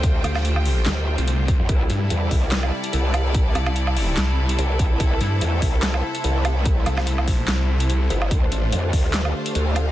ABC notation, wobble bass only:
X:1
M:4/4
L:1/16
Q:"Swing 16ths" 1/4=145
K:Cmix
V:1 name="Wobble bass" clef=bass
D,,2 z6 D,,3 z4 F,, | C,,2 z2 E,,2 C,,4 z2 C,,4- | C,,2 z8 z2 C,,4 | C,,2 z2 E,,2 C,,4 z2 C,,4- |
C,,2 z12 G,,,2 | D,,2 z2 F,,2 D,,4 z2 D,,4 |]